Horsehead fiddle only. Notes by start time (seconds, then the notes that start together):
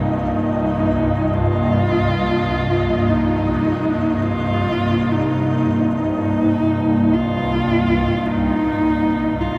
Already playing: D#4
0.19 D#4
1.34 F4
3.10 D#4
4.23 F4
5.11 D#4
5.95 D#4
7.13 F4
8.26 D#4
9.41 F4